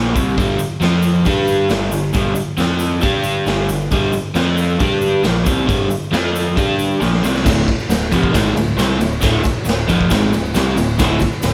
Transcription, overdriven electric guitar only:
0.00 0.14 A#2 medium
0.00 0.14 F3 medium
0.00 0.15 A#3 medium
0.14 0.36 C3 medium
0.14 0.36 G3 loud
0.14 0.37 C4 medium
0.37 0.58 G2 loud
0.37 0.59 D3 loud
0.37 0.59 G3 loud
0.59 muted overdriven electric guitar stroke soft
0.81 1.25 F3 medium
0.81 1.25 C4 medium
0.81 1.26 F4 loud
1.25 1.69 G3 medium
1.25 1.70 D4 medium
1.25 1.70 G4 loud
1.69 1.91 G2 medium
1.69 1.92 D3 medium
1.69 1.92 G3 medium
1.92 2.10 G2 medium
1.92 2.10 D3 medium
2.13 2.34 G2 loud
2.13 2.36 D3 loud
2.13 2.36 G3 loud
2.35 muted overdriven electric guitar stroke medium
2.57 3.02 F3 medium
2.57 3.01 C4 medium
2.57 3.02 F4 loud
3.02 3.46 G3 medium
3.02 3.46 D4 medium
3.02 3.47 G4 loud
3.46 3.68 G2 medium
3.46 3.69 D3 medium
3.46 3.69 G3 medium
3.69 3.87 G2 medium
3.69 3.87 D3 medium
3.91 4.13 G2 loud
3.91 4.13 D3 loud
3.91 4.14 G3 loud
4.14 muted overdriven electric guitar stroke medium
4.34 4.79 F3 loud
4.34 4.79 C4 medium
4.34 4.80 F4 loud
4.79 5.23 G3 loud
4.79 5.24 D4 loud
4.79 5.24 G4 medium
5.23 5.45 A#2 medium
5.23 5.46 F3 medium
5.23 5.46 A#3 loud
5.45 5.66 C3 medium
5.45 5.67 G3 medium
5.45 5.68 C4 loud
5.67 5.89 G2 medium
5.67 5.89 D3 loud
5.67 5.90 G3 loud
5.90 muted overdriven electric guitar stroke medium
6.12 6.56 F3 medium
6.12 6.55 C4 medium
6.12 6.56 F4 loud
6.56 7.00 G3 medium
6.56 7.00 D4 medium
6.56 7.01 G4 medium
7.00 7.22 A#2 medium
7.00 7.22 F3 medium
7.00 7.23 A#3 loud
7.23 7.44 C3 medium
7.23 7.44 G3 loud
7.23 7.45 C4 loud
7.44 7.66 D2 loud
7.44 7.67 A2 loud
7.44 7.67 D3 loud
7.67 muted overdriven electric guitar stroke medium
7.90 8.07 D2 medium
7.90 8.08 A2 medium
8.12 8.33 F2 medium
8.12 8.33 C3 loud
8.12 8.34 F3 loud
8.33 8.55 G#2 medium
8.33 8.55 D#3 loud
8.33 8.55 G#3 loud
8.55 8.73 D2 medium
8.55 8.73 A2 medium
8.77 8.99 C3 medium
8.77 8.99 G3 loud
8.77 9.00 C4 loud
8.99 9.17 D2 medium
8.99 9.17 A2 medium
9.21 9.42 D2 loud
9.21 9.43 A2 loud
9.21 9.43 D3 loud
9.43 muted overdriven electric guitar stroke medium
9.66 9.83 D2 medium
9.66 9.84 A2 medium
9.87 10.09 F2 loud
9.87 10.09 C3 medium
9.87 10.10 F3 loud
10.10 10.32 G#2 medium
10.10 10.32 D#3 loud
10.10 10.32 G#3 loud
10.33 10.50 D2 medium
10.33 10.50 A2 medium
10.54 10.76 C3 medium
10.54 10.76 G3 loud
10.54 10.77 C4 medium
10.77 10.95 D2 medium
10.77 10.94 A2 medium
10.98 11.19 D2 loud
10.98 11.20 A2 loud
10.98 11.21 D3 loud
11.20 muted overdriven electric guitar stroke medium
11.43 11.54 D2 medium
11.43 11.54 A2 medium

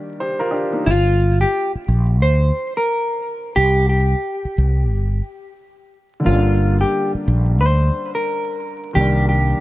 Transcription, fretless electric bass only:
0.87 1.44 G1 loud
1.75 muted fretless electric bass stroke soft
1.88 2.22 A#1 medium
2.22 2.50 D2 loud
3.57 4.13 C2 loud
4.45 muted fretless electric bass stroke soft
4.58 4.92 C2 loud
4.92 5.20 G1 medium
6.27 6.83 G1 loud
7.15 muted fretless electric bass stroke soft
7.28 7.61 A#1 medium
7.61 7.89 D2 medium
8.96 9.53 C2 loud

